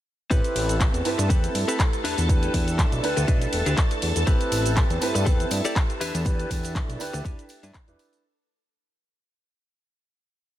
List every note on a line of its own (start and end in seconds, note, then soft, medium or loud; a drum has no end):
0.30 0.41 A1 loud
0.30 1.02 C4 medium
0.30 0.74 C4 loud
0.30 1.02 E4 medium
0.30 0.75 G4 medium
0.30 1.03 G4 medium
0.30 8.25 A4 medium
0.30 0.75 A4 loud
0.30 0.75 B4 loud
0.30 1.03 B4 loud
0.30 8.25 A5 medium
0.30 kick loud
0.30 closed hi-hat medium
0.30 ride medium
0.30 shaker medium
0.44 closed hi-hat soft
0.44 shaker soft
0.55 0.88 A1 medium
0.55 open hi-hat loud
0.55 ride medium
0.69 closed hi-hat soft
0.69 shaker medium
0.80 kick loud
0.80 clap loud
0.80 closed hi-hat medium
0.80 ride medium
0.80 shaker medium
0.94 1.02 E2 loud
0.94 closed hi-hat soft
0.94 shaker soft
1.05 1.16 G2 soft
1.05 2.03 C4 medium
1.05 2.03 E4 medium
1.05 2.03 G4 medium
1.05 2.03 B4 loud
1.05 open hi-hat loud
1.05 ride medium
1.18 1.31 G2 loud
1.18 muted clean electric guitar stroke medium
1.18 closed hi-hat soft
1.18 shaker medium
1.29 1.49 E2 medium
1.29 1.49 C4 medium
1.29 1.49 G4 medium
1.29 1.49 A4 medium
1.29 1.49 B4 medium
1.29 kick loud
1.29 closed hi-hat medium
1.29 ride medium
1.29 shaker medium
1.44 closed hi-hat soft
1.44 shaker soft
1.55 1.65 G2 medium
1.55 open hi-hat loud
1.55 ride medium
1.68 1.79 C4 medium
1.68 1.79 G4 medium
1.68 1.79 A4 medium
1.68 1.79 B4 medium
1.68 closed hi-hat soft
1.68 shaker medium
1.79 kick loud
1.79 clap loud
1.79 closed hi-hat medium
1.79 ride medium
1.79 shaker medium
1.93 muted clean electric guitar stroke soft
1.93 closed hi-hat soft
1.93 shaker soft
2.04 2.15 E2 soft
2.04 2.84 D4 loud
2.04 2.84 E4 medium
2.04 2.84 G4 medium
2.04 2.84 B4 medium
2.04 open hi-hat loud
2.04 ride medium
2.18 2.49 E2 medium
2.18 closed hi-hat soft
2.18 shaker medium
2.28 3.00 D4 medium
2.28 3.01 E4 medium
2.28 3.01 G4 medium
2.28 3.01 B4 loud
2.28 kick loud
2.28 closed hi-hat medium
2.28 ride medium
2.28 shaker medium
2.43 closed hi-hat soft
2.43 shaker soft
2.54 2.86 E2 medium
2.54 kick medium
2.54 open hi-hat loud
2.54 ride medium
2.68 closed hi-hat soft
2.68 shaker medium
2.79 kick loud
2.79 clap loud
2.79 closed hi-hat medium
2.79 ride medium
2.79 shaker medium
2.92 3.00 B1 loud
2.92 closed hi-hat soft
2.92 shaker soft
3.03 3.14 D2 soft
3.03 4.24 D4 medium
3.03 4.25 E4 medium
3.03 4.25 G4 medium
3.03 4.25 B4 loud
3.03 open hi-hat loud
3.03 ride medium
3.17 3.25 D2 loud
3.17 muted clean electric guitar stroke medium
3.17 closed hi-hat soft
3.17 shaker medium
3.28 3.47 B1 loud
3.28 3.47 D4 medium
3.28 3.47 E4 medium
3.28 3.47 G4 medium
3.28 3.48 B4 loud
3.28 kick loud
3.28 closed hi-hat medium
3.28 ride medium
3.28 shaker medium
3.42 closed hi-hat soft
3.42 shaker soft
3.53 3.63 E1 medium
3.53 open hi-hat loud
3.53 ride medium
3.66 3.75 D2 loud
3.66 3.78 D4 medium
3.66 3.78 E4 medium
3.66 3.78 G4 medium
3.66 3.78 B4 medium
3.66 closed hi-hat soft
3.66 shaker medium
3.78 kick loud
3.78 clap loud
3.78 closed hi-hat medium
3.78 ride medium
3.78 shaker medium
3.91 muted clean electric guitar stroke soft
3.91 closed hi-hat soft
3.91 shaker soft
4.02 4.12 E2 loud
4.02 open hi-hat loud
4.02 ride medium
4.16 4.24 E2 loud
4.16 closed hi-hat soft
4.16 shaker medium
4.26 4.37 A1 loud
4.26 4.99 C4 medium
4.26 4.71 C4 loud
4.26 4.99 E4 medium
4.26 4.99 G4 medium
4.26 4.71 G4 medium
4.26 4.71 A4 loud
4.26 4.99 B4 loud
4.26 4.72 B4 loud
4.26 kick loud
4.26 closed hi-hat medium
4.26 ride medium
4.26 tambourine soft
4.26 shaker medium
4.41 closed hi-hat soft
4.41 shaker soft
4.51 4.84 A1 medium
4.51 open hi-hat loud
4.51 ride medium
4.51 tambourine loud
4.66 closed hi-hat soft
4.66 tambourine medium
4.66 shaker medium
4.77 kick loud
4.77 clap loud
4.77 closed hi-hat medium
4.77 ride medium
4.77 shaker medium
4.90 4.99 E2 loud
4.90 closed hi-hat soft
4.90 shaker soft
5.01 5.13 G2 soft
5.01 5.99 C4 medium
5.01 5.99 E4 medium
5.01 6.00 G4 medium
5.01 6.00 B4 loud
5.01 open hi-hat loud
5.01 ride medium
5.01 tambourine loud
5.15 5.28 G2 loud
5.15 muted clean electric guitar stroke medium
5.15 closed hi-hat soft
5.15 tambourine medium
5.15 shaker medium
5.26 5.45 E2 medium
5.26 5.45 C4 medium
5.26 5.45 G4 medium
5.26 5.46 A4 medium
5.26 5.46 B4 medium
5.26 kick loud
5.26 closed hi-hat medium
5.26 ride medium
5.26 tambourine soft
5.26 shaker medium
5.40 closed hi-hat soft
5.40 shaker soft
5.51 5.61 G2 medium
5.51 open hi-hat loud
5.51 ride medium
5.51 tambourine medium
5.64 5.76 C4 medium
5.64 5.76 G4 medium
5.64 5.76 A4 medium
5.64 5.76 D5 loud
5.64 closed hi-hat soft
5.64 tambourine medium
5.64 shaker medium
5.76 kick loud
5.76 clap loud
5.76 closed hi-hat medium
5.76 ride medium
5.76 tambourine soft
5.76 shaker medium
5.90 muted clean electric guitar stroke soft
5.90 closed hi-hat soft
5.90 shaker soft
6.00 6.12 E2 soft
6.00 6.80 D4 medium
6.00 6.81 E4 medium
6.00 6.81 G4 medium
6.00 6.81 B4 loud
6.00 open hi-hat loud
6.00 ride medium
6.00 tambourine loud
6.15 6.46 E2 medium
6.15 closed hi-hat soft
6.15 tambourine medium
6.15 shaker medium
6.25 6.97 D4 medium
6.25 6.97 E4 medium
6.25 6.97 G4 medium
6.25 6.98 B4 loud
6.25 kick loud
6.25 closed hi-hat medium
6.25 ride medium
6.25 tambourine soft
6.25 shaker medium
6.40 closed hi-hat soft
6.40 shaker soft
6.50 6.83 E2 medium
6.50 kick medium
6.50 open hi-hat loud
6.50 ride medium
6.50 tambourine loud
6.63 closed hi-hat soft
6.63 tambourine medium
6.63 shaker medium
6.75 kick loud
6.75 clap loud
6.75 closed hi-hat medium
6.75 ride medium
6.75 tambourine soft
6.75 shaker medium
6.88 6.97 B1 loud
6.88 closed hi-hat soft
6.88 shaker soft
6.99 7.11 D2 soft
6.99 7.85 D4 medium
6.99 7.85 E4 medium
6.99 7.85 G4 medium
6.99 7.86 B4 loud
6.99 open hi-hat loud
6.99 ride medium
6.99 tambourine loud
7.13 7.22 D2 loud
7.13 muted clean electric guitar stroke medium
7.13 closed hi-hat soft
7.13 tambourine medium
7.13 shaker medium
7.25 7.35 E1 loud
7.25 7.44 D4 medium
7.25 7.44 E4 medium
7.25 7.44 G4 medium
7.25 7.44 B4 medium
7.25 kick loud
7.25 closed hi-hat medium
7.25 ride medium
7.25 shaker medium
7.39 closed hi-hat soft
7.39 shaker soft
7.49 open hi-hat loud
7.49 ride medium
7.49 tambourine loud
7.63 7.71 G2 loud
7.63 7.74 D4 medium
7.63 7.75 E4 medium
7.63 7.75 G4 medium
7.63 7.75 B4 medium
7.63 closed hi-hat soft
7.63 tambourine medium
7.63 shaker medium
7.74 kick loud
7.74 clap loud
7.74 closed hi-hat medium
7.74 ride medium
7.74 shaker medium
7.87 7.96 E1 medium
7.87 8.21 D4 loud
7.87 8.21 E4 medium
7.87 8.21 G4 medium
7.87 8.21 B4 loud
7.87 muted clean electric guitar stroke soft
7.87 closed hi-hat soft
7.87 shaker soft
7.99 open hi-hat loud
7.99 ride medium
7.99 tambourine medium
8.13 closed hi-hat soft
8.13 tambourine medium
8.13 shaker medium